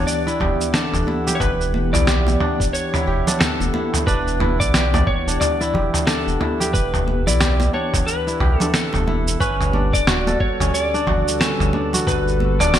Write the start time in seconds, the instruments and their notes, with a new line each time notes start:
Already playing: analog synth pad E3 B3 G4 F#5, kora D4 E4 G4 D5
0.07 electric slide guitar D5, shaker
0.27 kora E4, shaker
0.40 sub bass E1, kora G4, kick, mid tom, low conga
0.61 shaker
0.74 kora D4, electric slide guitar A4, snare, shaker
0.93 sub bass E1, mid tom, shaker
1.07 kora E4, high conga
1.27 kora G4, low conga, shaker
1.35 electric slide guitar C#5
1.40 sub bass E1, electric slide guitar B4, kick, mid tom, shaker
1.61 shaker
1.74 high conga
1.93 sub bass B1, kora E4, electric slide guitar D5, mid tom, shaker
2.07 kora G4, snare, shaker
2.27 high bongo, high conga, shaker
2.40 kora D4, mid tom
2.60 sub bass E1, kick, shaker
2.73 electric slide guitar C#5, shaker
2.94 kora E4, mid tom, shaker
3.07 sub bass E1, kora G4
3.27 kora D4, low conga, shaker
3.40 electric slide guitar A4, snare, mid tom, shaker
3.60 sub bass E1, high bongo, shaker
3.74 kora E4, high conga
3.94 mid tom, shaker
4.07 sub bass E1, kora D4, electric slide guitar B4, kick, shaker
4.28 shaker
4.40 kora E4, mid tom, high conga
4.60 sub bass B1, electric slide guitar D5, kick, shaker
4.74 kora G4, snare, shaker
4.94 kora D5, mid tom, high bongo, high conga, shaker
5.07 electric slide guitar C#5, kick
5.27 sub bass E1, kora D4, shaker
5.40 electric slide guitar D5, mid tom, shaker
5.61 kora E4, shaker
5.74 sub bass E1, kora G4, kick, low conga
5.94 mid tom, shaker
6.07 kora D4, electric slide guitar A4, snare, shaker
6.27 sub bass E1, shaker
6.40 kora E4, mid tom, high conga
6.60 kora G4, low conga, shaker
6.73 sub bass E1, electric slide guitar B4, kick, shaker
6.94 mid tom, shaker
7.08 high conga
7.27 sub bass B1, kora E4, electric slide guitar D5, low conga, shaker
7.41 kora G4, snare, mid tom, shaker
7.60 high bongo, high conga, shaker
7.73 kora D4, electric slide guitar C#5
7.93 sub bass E1, kick, mid tom, shaker
8.07 electric slide guitar B4, shaker
8.27 kora E4, shaker
8.40 sub bass B1, kora G4, mid tom
8.59 kora D4, electric slide guitar A4, low conga, shaker
8.74 electric slide guitar A4, snare, shaker
8.93 sub bass E1, mid tom, high bongo, shaker
9.07 kora E4, high conga
9.28 shaker
9.40 sub bass G1, analog synth pad G3, kora C#4, electric slide guitar B4, kick, shaker
9.61 mid tom, shaker
9.73 kora D4, high conga
9.93 sub bass D1, electric slide guitar D5, kick, shaker
10.07 kora F#4, analog synth pad A4, snare, mid tom, shaker
10.15 analog synth pad D3
10.27 kora A4, high bongo, high conga, shaker
10.40 electric slide guitar C#5, kick
10.60 sub bass G1, kora C#4, mid tom, shaker
10.74 electric slide guitar D5, shaker
10.94 kora D4, shaker
11.07 sub bass G1, kora F#4, kick, mid tom, low conga
11.24 analog synth pad B4
11.28 shaker
11.41 kora C#4, electric slide guitar A4, snare, shaker
11.60 sub bass G1, mid tom, shaker
11.73 kora D4, high conga
11.93 kora F#4, low conga, shaker
12.07 sub bass G1, electric slide guitar B4, kick, mid tom, shaker
12.28 shaker
12.40 high conga
12.60 sub bass D1, kora D4, electric slide guitar D5, mid tom, shaker
12.74 kora F#4, snare, shaker